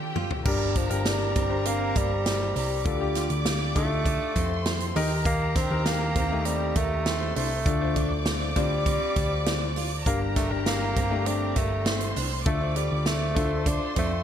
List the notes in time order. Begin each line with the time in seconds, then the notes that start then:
Already playing: D3 D4 F4 G4 A4 G5
0.16 F4, mid tom
0.31 floor tom
0.45 G1 G2 G3 D4 G4 A#4 A#5, kick, crash
0.76 F3 D4, kick, closed hi-hat
0.90 G1 D4 G4 A#4, closed hi-hat
1.06 G3, snare, closed hi-hat
1.36 G1 C4, kick, closed hi-hat
1.50 D4 G4 C5
1.65 A#3 C4, closed hi-hat
1.96 G1 G3 A#3, kick, closed hi-hat
2.26 snare, closed hi-hat
2.56 C2 G3 D4, open hi-hat
2.85 D2 D3 D4 F4 A4 D5 D6, kick, closed hi-hat
3.00 D4 F4 G4
3.15 F4, snare, closed hi-hat
3.30 D2, closed hi-hat
3.46 snare, closed hi-hat
3.76 D2 A3 D4 D#4 A4, kick, closed hi-hat
3.82 F4
4.06 D4, kick, closed hi-hat
4.36 F2 C4 C5 C6, kick, closed hi-hat
4.66 snare, closed hi-hat
4.80 closed hi-hat
4.96 D#2 D#3 D#4 G4 A#4 A#5, open hi-hat
5.25 A#3, kick, closed hi-hat
5.56 C4 D4, kick, snare, closed hi-hat
5.71 D#2 D#4 G4 A#4
5.86 A#3, snare, closed hi-hat
6.16 D#2 C4, kick, closed hi-hat
6.32 A3 D#4 G4
6.45 G3 C4, closed hi-hat
6.76 D#2 A3 A#3, kick, closed hi-hat
7.05 C5 C6, snare, closed hi-hat
7.36 C2 A3 D4, open hi-hat
7.66 D2 D3 D4 F4 A4 D5 D6, kick, closed hi-hat
7.82 D4 F4 C5
7.96 D4, kick, closed hi-hat
8.11 D2
8.26 snare, closed hi-hat
8.56 D2 G3 C4 D4 F4 C5, kick, closed hi-hat
8.86 C4, kick, closed hi-hat
9.16 D2 D4, kick, closed hi-hat
9.46 snare, closed hi-hat
9.76 F4, open hi-hat
10.06 G1 G2 A#3 D4 G4 A#4 A#5, kick, closed hi-hat
10.36 A3 D4, kick, snare, closed hi-hat
10.51 G1 D4 G4 A#4
10.66 A#3, snare, closed hi-hat
10.96 G1 C4, kick, closed hi-hat
11.11 A3 D4 G4
11.26 C4 D4, closed hi-hat
11.56 G1 A3 A#3, kick, closed hi-hat
11.86 C5 C6, snare, closed hi-hat
12.00 closed hi-hat
12.16 C2 D4, open hi-hat
12.45 D2 D3 A3 D4 F4 A4 D5 D6, kick, closed hi-hat
12.60 D4 F4 C5
12.76 G3 F4, closed hi-hat
12.92 D2
13.06 A3, snare, closed hi-hat
13.35 D2 D4 F4 A4 C5 C6, kick, closed hi-hat
13.66 D4, kick, closed hi-hat
13.96 F2 A3 C4, kick, closed hi-hat